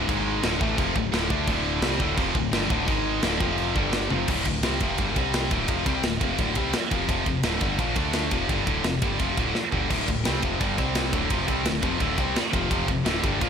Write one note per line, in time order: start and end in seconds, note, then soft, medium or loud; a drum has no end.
0.08 0.41 G#1 loud
0.08 0.43 G#2 medium
0.08 0.43 D#3 medium
0.08 0.43 G#3 medium
0.08 kick loud
0.08 crash medium
0.43 0.59 D1 medium
0.43 0.60 D2 loud
0.43 0.60 A2 loud
0.43 0.61 D3 loud
0.43 snare loud
0.43 crash medium
0.61 0.77 A1 medium
0.61 0.78 A2 medium
0.61 0.78 E3 loud
0.61 0.78 A3 loud
0.61 kick loud
0.78 0.94 F1 loud
0.78 0.95 F2 medium
0.78 0.95 C3 loud
0.78 0.96 F3 medium
0.78 kick loud
0.78 crash medium
0.95 1.11 D1 medium
0.95 1.10 D2 medium
0.95 1.10 A2 medium
0.95 kick loud
1.12 1.29 D1 medium
1.12 1.30 D2 loud
1.12 1.29 A2 loud
1.12 1.29 D3 loud
1.12 snare loud
1.12 crash medium
1.30 1.47 D2 loud
1.30 1.47 D3 medium
1.30 1.48 A3 loud
1.30 1.48 D4 loud
1.30 kick loud
1.47 1.80 D1 medium
1.47 1.81 D2 medium
1.47 1.82 A2 medium
1.47 1.83 D3 loud
1.47 kick loud
1.47 crash medium
1.81 1.99 C2 loud
1.81 1.99 C3 loud
1.81 1.99 G3 loud
1.81 2.00 C4 loud
1.81 snare loud
1.81 crash medium
1.99 2.16 D1 medium
1.99 2.16 D2 loud
1.99 2.17 A2 loud
1.99 2.17 D3 loud
1.99 kick loud
2.17 2.34 F1 loud
2.17 2.34 F2 loud
2.17 2.35 C3 medium
2.17 2.35 F3 loud
2.17 kick loud
2.17 crash medium
2.34 2.51 D1 medium
2.34 2.49 D2 medium
2.34 2.50 A2 medium
2.34 kick medium
2.51 2.68 G1 loud
2.51 2.68 G2 loud
2.51 2.68 D3 loud
2.51 2.69 G3 loud
2.51 snare loud
2.51 crash medium
2.68 2.87 D1 loud
2.68 2.85 D2 medium
2.68 2.85 A2 medium
2.68 2.86 D3 loud
2.68 kick loud
2.85 3.21 G#1 medium
2.85 3.21 G#2 loud
2.85 3.22 D#3 loud
2.85 3.22 G#3 loud
2.85 kick loud
2.85 crash medium
3.22 3.39 D1 loud
3.22 3.39 D2 loud
3.22 3.40 A2 loud
3.22 3.40 D3 loud
3.22 snare loud
3.22 crash medium
3.40 3.73 F1 medium
3.40 3.75 F2 medium
3.40 3.75 C3 loud
3.40 3.75 F3 loud
3.40 kick loud
3.58 crash medium
3.75 4.08 G1 loud
3.75 4.09 G2 medium
3.75 4.10 D3 loud
3.75 4.10 G3 loud
3.75 kick loud
3.93 snare loud
3.93 crash medium
4.10 4.27 F1 loud
4.10 4.27 F2 medium
4.10 4.28 C3 medium
4.10 4.28 F3 medium
4.10 high tom medium
4.28 4.44 D1 medium
4.28 4.46 D2 medium
4.28 4.46 A2 medium
4.28 4.46 D3 loud
4.28 kick loud
4.28 crash loud
4.45 4.62 D1 medium
4.45 4.60 D2 medium
4.45 4.61 A2 medium
4.45 kick medium
4.45 ride medium
4.62 4.79 C2 medium
4.62 4.80 C3 loud
4.62 4.81 G3 loud
4.62 4.81 C4 loud
4.62 snare loud
4.62 ride loud
4.80 4.97 F1 medium
4.80 4.97 F2 loud
4.80 4.98 C3 loud
4.80 4.99 F3 loud
4.80 kick loud
4.80 ride medium
4.98 5.15 G1 loud
4.98 5.15 G2 medium
4.98 5.16 D3 medium
4.98 5.16 G3 loud
4.98 kick loud
4.98 ride loud
5.15 5.49 C2 loud
5.15 5.50 C3 medium
5.15 5.51 G3 medium
5.15 5.51 C4 loud
5.15 kick loud
5.15 ride medium
5.34 snare loud
5.34 ride loud
5.50 5.67 D1 medium
5.50 5.68 D2 medium
5.50 5.68 A2 loud
5.50 5.68 D3 medium
5.50 kick loud
5.50 ride medium
5.68 5.85 F1 medium
5.68 5.85 F2 medium
5.68 5.84 C3 medium
5.68 5.86 F3 loud
5.68 kick loud
5.68 ride loud
5.85 6.01 C2 loud
5.85 6.03 C3 medium
5.85 6.03 G3 medium
5.85 6.04 C4 loud
5.85 kick loud
5.85 ride medium
6.02 6.19 D1 medium
6.02 6.18 D2 medium
6.02 6.18 A2 medium
6.02 snare loud
6.02 ride loud
6.21 6.37 F1 medium
6.21 6.39 F2 loud
6.21 6.39 C3 loud
6.21 6.40 F3 loud
6.21 kick loud
6.21 ride medium
6.38 6.55 D1 loud
6.38 6.56 D2 medium
6.38 6.57 A2 loud
6.38 6.57 D3 loud
6.38 kick loud
6.38 ride loud
6.55 6.72 C2 medium
6.55 6.73 C3 medium
6.55 6.74 G3 medium
6.55 6.74 C4 loud
6.55 kick loud
6.55 ride medium
6.73 muted distorted electric guitar stroke medium
6.73 snare loud
6.73 ride loud
6.91 7.08 F1 loud
6.91 7.08 F2 loud
6.91 7.09 C3 medium
6.91 7.09 F3 loud
6.91 kick loud
6.91 ride medium
7.09 7.25 F1 medium
7.09 7.26 F2 medium
7.09 7.27 C3 medium
7.09 7.27 F3 loud
7.09 kick loud
7.09 ride loud
7.26 7.42 F1 medium
7.26 7.41 F2 medium
7.26 7.41 C3 medium
7.26 kick medium
7.26 ride medium
7.42 7.59 D1 medium
7.42 7.61 D2 loud
7.42 7.62 A2 loud
7.42 7.61 D3 loud
7.42 snare loud
7.42 ride loud
7.61 7.78 G1 medium
7.61 7.78 G2 loud
7.61 7.79 D3 loud
7.61 7.79 G3 loud
7.61 kick loud
7.61 ride medium
7.78 7.95 A#1 medium
7.78 7.96 A#2 loud
7.78 7.96 F3 loud
7.78 7.96 A#3 loud
7.78 kick loud
7.78 ride loud
7.96 8.29 D2 loud
7.96 8.31 D3 medium
7.96 8.31 A3 loud
7.96 8.32 D4 loud
7.96 kick loud
7.96 ride medium
8.13 snare loud
8.13 ride loud
8.31 8.48 F1 loud
8.31 8.47 F2 medium
8.31 8.48 C3 loud
8.31 8.49 F3 loud
8.31 kick loud
8.31 ride medium
8.48 8.65 G1 medium
8.48 8.65 G2 medium
8.48 8.65 D3 medium
8.48 8.66 G3 loud
8.48 kick loud
8.48 ride loud
8.66 8.83 D1 loud
8.66 8.83 D2 medium
8.66 8.84 A2 loud
8.66 8.84 D3 loud
8.66 kick loud
8.66 ride medium
8.83 9.00 F1 medium
8.83 8.98 F2 medium
8.83 8.98 C3 medium
8.83 snare loud
8.83 ride loud
9.02 9.18 G1 medium
9.02 9.19 G2 loud
9.02 9.19 D3 loud
9.02 9.19 G3 loud
9.02 kick loud
9.02 ride medium
9.19 9.36 F1 medium
9.19 9.36 F2 medium
9.19 9.37 C3 loud
9.19 9.37 F3 loud
9.19 kick loud
9.19 ride loud
9.37 9.53 D1 medium
9.37 9.55 D2 medium
9.37 9.55 A2 loud
9.37 9.55 D3 loud
9.37 kick loud
9.37 ride medium
9.55 muted distorted electric guitar stroke medium
9.55 snare medium
9.72 9.89 G1 medium
9.72 9.90 G2 medium
9.72 9.90 D3 loud
9.72 9.90 G3 medium
9.72 floor tom medium
9.90 10.06 D1 medium
9.90 10.06 D2 loud
9.90 10.06 A2 medium
9.90 10.08 D3 loud
9.90 kick loud
9.90 crash loud
10.07 10.24 D1 medium
10.07 10.21 D2 medium
10.07 10.21 A2 medium
10.07 kick medium
10.07 ride medium
10.24 10.42 C2 medium
10.24 10.41 C3 loud
10.24 10.42 G3 loud
10.24 10.42 C4 loud
10.24 snare loud
10.24 ride loud
10.42 10.59 F1 medium
10.42 10.59 F2 medium
10.42 10.60 C3 loud
10.42 10.60 F3 loud
10.42 kick loud
10.42 ride medium
10.60 10.77 G1 loud
10.60 10.77 G2 medium
10.60 10.77 D3 loud
10.60 10.77 G3 loud
10.60 kick loud
10.60 ride loud
10.78 11.11 C2 loud
10.78 11.13 C3 medium
10.78 11.13 G3 loud
10.78 11.13 C4 loud
10.78 kick loud
10.78 ride medium
10.95 snare loud
10.95 ride loud
11.12 11.29 D1 medium
11.12 11.29 D2 medium
11.12 11.30 A2 medium
11.12 11.31 D3 loud
11.12 kick loud
11.12 ride medium
11.30 11.46 F1 medium
11.30 11.47 F2 medium
11.30 11.46 C3 loud
11.30 11.48 F3 medium
11.30 kick loud
11.30 ride loud
11.47 11.64 C2 loud
11.47 11.64 C3 loud
11.47 11.65 G3 loud
11.47 11.65 C4 loud
11.47 kick medium
11.47 ride medium
11.65 11.82 D1 medium
11.65 11.79 D2 medium
11.65 11.79 A2 medium
11.65 snare loud
11.65 ride loud
11.82 11.99 F1 medium
11.82 11.98 F2 loud
11.82 11.99 C3 loud
11.82 12.00 F3 loud
11.82 kick loud
11.82 ride medium
11.99 12.17 D1 loud
11.99 12.17 D2 medium
11.99 12.17 A2 medium
11.99 12.17 D3 loud
11.99 kick loud
11.99 ride medium
12.18 12.34 C2 medium
12.18 12.35 C3 medium
12.18 12.36 G3 medium
12.18 12.36 C4 loud
12.18 kick loud
12.18 ride medium
12.36 muted distorted electric guitar stroke medium
12.36 muted picked electric bass stroke soft
12.36 snare loud
12.36 ride loud
12.53 12.70 F1 loud
12.53 12.69 F2 medium
12.53 12.70 C3 medium
12.53 12.70 F3 medium
12.53 kick loud
12.53 ride medium
12.70 12.87 F1 medium
12.70 12.87 F2 medium
12.70 12.87 C3 loud
12.70 12.88 F3 loud
12.70 kick loud
12.70 ride loud
12.88 13.03 F1 medium
12.88 13.02 F2 medium
12.88 13.03 C3 medium
12.88 kick medium
12.88 ride medium
13.04 13.21 D1 loud
13.04 13.22 D2 loud
13.04 13.23 A2 loud
13.04 13.22 D3 loud
13.04 snare loud
13.04 ride loud
13.23 13.40 G1 loud
13.23 13.40 G2 medium
13.23 13.41 D3 loud
13.23 13.41 G3 loud
13.23 kick loud
13.23 ride medium
13.41 13.49 A#1 loud
13.41 13.49 A#2 loud
13.41 13.49 F3 medium
13.41 13.49 A#3 loud
13.41 kick loud
13.41 ride loud